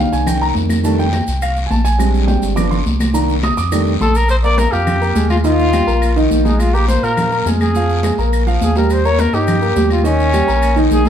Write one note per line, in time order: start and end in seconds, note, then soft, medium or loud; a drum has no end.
0.00 0.80 D#3 medium
0.00 0.81 A#3 soft
0.00 0.81 D4 medium
0.00 0.12 F5 medium
0.12 0.53 C2 medium
0.12 0.26 G#5 medium
0.12 high conga soft
0.12 short guiro medium
0.12 maracas medium
0.27 0.41 G5 medium
0.27 high conga soft
0.27 low conga medium
0.27 long guiro medium
0.27 claves medium
0.27 maracas medium
0.41 0.50 A#5 medium
0.41 high conga soft
0.55 1.22 F2 loud
0.55 high conga medium
0.55 short guiro medium
0.55 maracas soft
0.69 high conga medium
0.69 short guiro medium
0.69 claves medium
0.69 maracas medium
0.84 1.03 D#3 medium
0.84 1.04 G3 soft
0.84 1.04 A3 soft
0.84 1.04 D4 medium
0.84 0.99 A5 medium
0.84 high conga soft
0.84 long guiro medium
0.84 maracas medium
0.98 1.39 G5 medium
0.98 high conga soft
0.98 maracas soft
1.13 high conga medium
1.13 short guiro medium
1.13 claves medium
1.13 maracas soft
1.27 1.68 C2 medium
1.27 high conga soft
1.27 short guiro medium
1.27 maracas medium
1.42 1.56 F5 medium
1.42 high conga soft
1.42 long guiro medium
1.42 claves medium
1.42 maracas medium
1.56 high conga soft
1.56 maracas soft
1.66 1.69 G#5 medium
1.70 2.37 A#1 loud
1.70 1.85 A5 medium
1.70 high conga medium
1.70 short guiro medium
1.70 maracas soft
1.85 2.25 G#5 loud
1.85 high conga soft
1.85 short guiro medium
1.85 maracas medium
1.98 2.54 G3 medium
1.98 2.54 G#3 medium
1.98 2.54 C4 medium
1.98 2.54 D4 medium
1.98 high conga soft
1.98 long guiro medium
1.98 claves medium
1.98 maracas medium
2.14 high conga soft
2.14 maracas soft
2.28 2.42 G5 medium
2.28 high conga medium
2.28 short guiro medium
2.28 maracas soft
2.42 2.83 G1 medium
2.42 high conga soft
2.42 short guiro medium
2.42 maracas medium
2.55 2.75 F3 medium
2.55 2.76 B3 medium
2.55 2.76 D4 medium
2.55 2.71 D6 medium
2.55 high conga soft
2.55 low conga medium
2.55 long guiro medium
2.55 claves medium
2.55 maracas medium
2.71 3.11 C6 medium
2.71 high conga soft
2.71 low conga medium
2.71 maracas soft
2.86 3.52 C2 loud
2.86 high conga medium
2.86 short guiro medium
2.86 maracas soft
3.00 high conga medium
3.00 short guiro medium
3.00 claves medium
3.00 maracas medium
3.14 3.33 D#3 medium
3.14 3.33 A#3 medium
3.14 3.34 D4 medium
3.14 3.28 A#5 medium
3.14 high conga soft
3.14 long guiro medium
3.14 maracas loud
3.29 high conga soft
3.29 maracas soft
3.43 3.58 D#6 loud
3.43 high conga medium
3.43 short guiro medium
3.43 claves medium
3.43 maracas soft
3.57 3.98 F2 medium
3.57 3.98 D6 medium
3.57 high conga soft
3.57 short guiro medium
3.57 maracas medium
3.72 3.91 D#3 medium
3.72 3.91 G3 soft
3.72 3.91 A3 soft
3.72 3.92 D4 medium
3.72 high conga soft
3.72 long guiro medium
3.72 claves medium
3.72 maracas medium
3.87 high conga soft
3.87 maracas soft
4.01 4.67 A#1 loud
4.01 4.18 A4 loud
4.01 4.10 C6 medium
4.01 high conga medium
4.01 short guiro medium
4.01 maracas soft
4.15 4.30 A#4 loud
4.15 high conga soft
4.15 short guiro medium
4.15 maracas medium
4.29 4.37 C5 loud
4.29 high conga soft
4.29 long guiro medium
4.29 claves medium
4.29 maracas medium
4.44 4.68 A#3 medium
4.44 4.68 A#4 medium
4.44 4.60 D5 loud
4.44 4.68 A#5 medium
4.44 high conga soft
4.44 maracas soft
4.58 4.73 A#4 medium
4.58 high conga medium
4.58 short guiro medium
4.58 maracas medium
4.72 5.13 F2 medium
4.72 4.96 F4 medium
4.72 5.29 G4 medium
4.72 4.96 F5 medium
4.72 4.96 F6 medium
4.72 high conga soft
4.72 short guiro medium
4.72 maracas soft
4.87 high conga soft
4.87 low conga medium
4.87 long guiro medium
4.87 claves medium
4.87 maracas medium
5.01 5.13 A#3 medium
5.01 5.13 A#4 medium
5.01 5.14 A#5 medium
5.01 high conga soft
5.01 maracas soft
5.15 5.82 D#2 loud
5.15 5.39 G#3 medium
5.15 5.39 G#4 medium
5.15 5.40 G#5 medium
5.15 high conga medium
5.15 short guiro medium
5.15 maracas medium
5.30 5.36 F4 medium
5.30 high conga medium
5.30 short guiro medium
5.30 claves medium
5.30 maracas soft
5.44 5.68 D#3 medium
5.44 5.68 D#4 medium
5.44 6.27 F4 loud
5.44 5.68 D#5 medium
5.44 high conga soft
5.44 long guiro medium
5.44 maracas medium
5.59 high conga soft
5.59 maracas soft
5.73 5.85 G3 medium
5.73 5.85 G4 medium
5.73 5.85 G5 medium
5.73 high conga medium
5.73 short guiro medium
5.73 claves medium
5.73 maracas medium
5.87 6.28 A#1 medium
5.87 6.11 A#3 medium
5.87 6.11 A#4 medium
5.87 6.11 A#5 medium
5.87 high conga soft
5.87 short guiro medium
5.87 maracas soft
6.02 high conga soft
6.02 long guiro medium
6.02 claves medium
6.02 maracas medium
6.16 6.40 D#3 medium
6.16 6.40 D#4 medium
6.16 6.40 D#5 medium
6.16 high conga soft
6.16 maracas soft
6.31 6.97 A#1 loud
6.31 high conga medium
6.31 short guiro medium
6.31 maracas medium
6.45 6.69 G#3 medium
6.45 6.61 D#4 medium
6.45 6.69 G#4 medium
6.45 6.69 G#5 medium
6.45 high conga medium
6.45 short guiro medium
6.45 maracas soft
6.59 6.75 F4 medium
6.59 high conga soft
6.59 long guiro medium
6.59 claves medium
6.59 maracas medium
6.74 6.98 A#3 medium
6.74 6.88 G4 medium
6.74 6.98 A#4 medium
6.74 6.98 A#5 medium
6.74 high conga soft
6.74 maracas soft
6.88 7.05 C5 medium
6.88 high conga medium
6.88 short guiro medium
6.88 maracas medium
7.03 7.43 A#2 medium
7.03 7.26 F4 medium
7.03 7.46 A#4 loud
7.03 7.26 F5 medium
7.03 7.27 F6 medium
7.03 high conga soft
7.03 short guiro medium
7.03 maracas soft
7.17 high conga soft
7.17 low conga medium
7.17 long guiro medium
7.17 claves medium
7.17 maracas medium
7.31 7.43 A#3 medium
7.31 7.43 A#4 medium
7.31 7.44 A#5 medium
7.31 high conga soft
7.31 maracas soft
7.45 8.12 F2 loud
7.45 7.70 G#3 medium
7.45 7.70 G#4 medium
7.45 7.70 G#5 medium
7.45 high conga medium
7.45 short guiro medium
7.45 maracas medium
7.61 8.16 G#4 medium
7.61 high conga medium
7.61 short guiro medium
7.61 claves medium
7.61 maracas soft
7.75 7.99 F3 medium
7.75 7.99 F4 medium
7.75 7.99 F5 medium
7.75 high conga soft
7.75 long guiro medium
7.75 maracas medium
7.89 high conga soft
7.89 maracas soft
8.03 8.16 G#3 medium
8.03 8.16 G#4 medium
8.03 8.16 G#5 medium
8.03 high conga medium
8.03 short guiro medium
8.03 claves medium
8.03 maracas medium
8.18 8.58 A#1 medium
8.18 8.42 A#3 medium
8.18 8.42 A#4 medium
8.18 8.42 A#5 medium
8.18 short guiro medium
8.18 maracas soft
8.32 high conga soft
8.32 long guiro medium
8.32 claves medium
8.32 maracas medium
8.47 8.70 F3 medium
8.47 8.71 F4 medium
8.47 8.71 F5 medium
8.47 high conga soft
8.47 maracas soft
8.61 9.28 D#2 loud
8.61 8.76 G#4 medium
8.61 high conga medium
8.61 short guiro medium
8.61 maracas medium
8.75 9.00 G3 medium
8.75 9.00 G4 medium
8.75 8.93 A#4 medium
8.75 9.00 G5 medium
8.75 high conga medium
8.75 short guiro medium
8.75 maracas soft
8.90 9.07 C5 medium
8.90 high conga soft
8.90 long guiro medium
8.90 claves medium
8.90 maracas medium
9.04 9.28 A#3 medium
9.04 9.29 A#4 medium
9.04 9.21 C#5 medium
9.04 9.29 A#5 medium
9.04 high conga soft
9.04 maracas soft
9.19 9.36 A#4 medium
9.19 high conga medium
9.19 short guiro medium
9.19 maracas medium
9.33 9.73 G2 medium
9.33 9.57 D#4 medium
9.33 9.91 G4 medium
9.33 9.57 D#5 medium
9.33 9.57 D#6 medium
9.33 high conga soft
9.33 short guiro medium
9.33 maracas soft
9.48 high conga soft
9.48 low conga medium
9.48 long guiro medium
9.48 claves medium
9.48 maracas medium
9.61 9.73 A#3 medium
9.61 9.74 A#4 medium
9.61 9.74 A#5 medium
9.61 high conga soft
9.61 maracas soft
9.76 10.43 D#2 loud
9.76 10.00 G3 medium
9.76 10.00 G4 medium
9.76 10.00 G5 medium
9.76 high conga medium
9.76 short guiro medium
9.76 maracas medium
9.90 10.05 F4 medium
9.90 high conga medium
9.90 short guiro medium
9.90 claves medium
9.90 maracas soft
10.04 10.28 D#3 medium
10.04 10.88 C#4 loud
10.04 10.28 D#4 medium
10.04 10.28 D#5 medium
10.04 high conga soft
10.04 long guiro medium
10.04 maracas medium
10.19 high conga soft
10.19 maracas soft
10.33 10.45 G3 medium
10.33 10.45 G4 medium
10.33 10.46 G5 medium
10.33 high conga medium
10.33 short guiro medium
10.33 claves medium
10.33 maracas medium
10.47 10.89 A#1 medium
10.47 10.71 A#3 medium
10.47 10.71 A#4 medium
10.47 10.72 A#5 medium
10.47 high conga soft
10.47 short guiro medium
10.47 maracas soft
10.62 high conga soft
10.62 long guiro medium
10.62 claves medium
10.62 maracas medium
10.76 11.00 D#3 medium
10.76 11.00 D#4 medium
10.76 11.01 D#5 medium
10.76 high conga soft
10.76 maracas soft
10.91 11.09 A#1 loud
10.91 11.09 G#4 medium
10.91 high conga medium
10.91 short guiro medium
10.91 maracas medium
11.05 11.09 G#3 medium
11.05 11.09 G#4 medium
11.05 11.09 G#5 medium
11.05 high conga medium
11.05 maracas soft